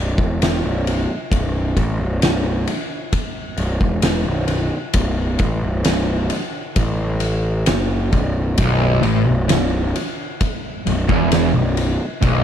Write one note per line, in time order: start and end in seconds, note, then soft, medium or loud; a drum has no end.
0.00 0.15 B0 medium
0.18 0.60 E1 medium
0.18 kick loud
0.42 snare loud
0.42 ride loud
0.64 1.06 B0 medium
0.87 ride medium
1.31 1.74 B0 medium
1.31 kick loud
1.31 ride medium
1.76 1.98 A1 medium
1.76 kick medium
1.76 ride medium
1.99 2.20 B0 medium
2.22 2.65 B0 medium
2.22 snare loud
2.22 ride medium
2.67 ride medium
3.13 kick loud
3.13 ride medium
3.57 3.79 B0 medium
3.57 ride medium
3.81 4.23 E1 loud
3.81 kick loud
4.02 snare loud
4.02 ride loud
4.26 4.69 B0 medium
4.48 ride medium
4.93 5.37 B0 loud
4.93 kick loud
4.93 ride loud
5.39 5.61 A1 medium
5.39 kick loud
5.39 ride medium
5.63 5.84 B0 medium
5.84 6.28 B0 medium
5.84 snare loud
5.84 ride loud
6.30 ride medium
6.76 7.63 A1 medium
6.76 kick loud
6.76 ride medium
7.20 ride medium
7.66 8.10 F#1 medium
7.66 snare loud
7.66 ride loud
8.12 8.55 B0 medium
8.12 kick medium
8.12 ride medium
8.58 9.01 B0 medium
8.58 9.02 B1 loud
8.58 kick loud
8.58 ride medium
9.03 9.25 A1 medium
9.03 9.25 A2 medium
9.03 ride medium
9.25 9.48 B0 medium
9.25 9.47 B1 medium
9.49 9.92 B0 medium
9.49 9.86 B1 medium
9.49 snare loud
9.49 ride medium
9.96 ride medium
10.41 kick loud
10.41 ride medium
10.86 11.08 B0 medium
10.86 11.08 B1 medium
10.86 ride medium
11.08 11.51 E1 medium
11.08 11.53 E2 loud
11.08 kick loud
11.32 snare loud
11.32 ride loud
11.54 11.97 B0 medium
11.54 11.91 B1 medium
11.77 ride medium
12.22 12.44 B0 loud
12.22 12.44 B1 loud
12.22 kick loud
12.22 ride medium